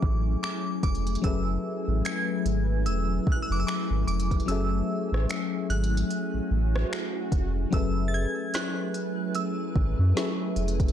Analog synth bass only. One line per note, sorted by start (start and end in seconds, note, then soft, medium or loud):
0.03 0.36 A1 medium
0.83 1.17 F1 medium
1.24 1.58 F#1 loud
1.88 2.02 A1 medium
2.46 2.88 G#1 medium
2.86 3.20 E1 loud
3.50 3.64 F#1 medium
3.91 4.05 G#1 medium
4.08 4.41 F1 loud
4.48 4.82 F#1 loud
5.12 5.26 A1 medium
5.70 6.04 G#1 medium
6.34 6.41 A1 soft
6.51 6.85 A1 medium
7.32 7.66 F1 medium
7.73 8.26 F#1 loud
9.76 9.95 G#1 medium
9.99 10.13 F#2 medium
10.56 10.90 F1 medium